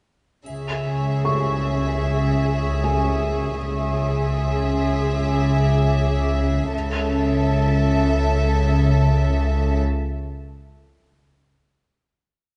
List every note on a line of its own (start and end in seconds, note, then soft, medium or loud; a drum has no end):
0.46 3.57 C#2 soft
0.46 3.57 C#3 soft
0.46 3.57 G#4 soft
0.46 3.57 E5 soft
0.46 6.30 G#5 soft
0.46 triangle soft
0.50 4.28 C#6 soft
1.25 3.57 C#6 soft
2.06 5.25 D#6 soft
2.84 5.14 G#5 soft
3.61 6.68 C#2 soft
3.61 6.68 C#3 soft
3.61 6.69 G#4 soft
3.61 6.69 E5 soft
4.28 5.53 C6 soft
5.25 6.30 D6 soft
6.71 9.80 C#2 soft
6.71 9.79 C#3 soft
6.71 9.79 A4 soft
6.71 9.79 E5 soft